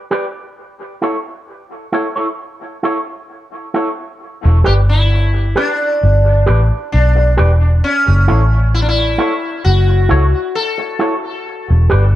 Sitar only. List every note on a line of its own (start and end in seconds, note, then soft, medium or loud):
4.66 4.72 G4 medium
4.89 5.59 E4 medium
5.57 6.89 D4 medium
6.92 7.84 D4 medium
7.84 8.70 C#4 loud
8.74 8.81 E4 medium
8.82 8.88 D4 medium
8.89 9.64 E4 loud
9.64 10.55 F#4 loud
10.55 11.20 A4 loud